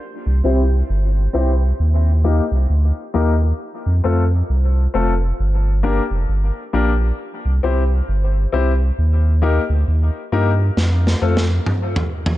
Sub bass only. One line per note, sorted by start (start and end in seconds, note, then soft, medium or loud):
0.26 0.42 C2 medium
0.44 0.83 C2 medium
0.89 1.28 G1 loud
1.34 1.73 C2 medium
1.80 2.41 D#2 loud
2.51 2.67 C2 medium
2.70 2.92 D2 loud
3.15 3.53 D#2 medium
3.86 4.01 F2 medium
4.05 4.43 F2 medium
4.50 4.88 C2 medium
4.94 5.32 F1 medium
5.40 6.00 G1 loud
6.10 6.26 F1 medium
6.28 6.51 G1 medium
6.74 7.12 A#1 medium
7.45 7.60 C2 medium
7.63 8.02 C2 medium
8.08 8.47 G1 medium
8.53 8.91 C2 medium
8.98 9.59 D#2 loud
9.69 9.85 D2 medium
9.88 10.10 D#2 medium
10.32 10.71 G2 medium
10.77 11.15 F2 medium
11.22 11.60 F2 medium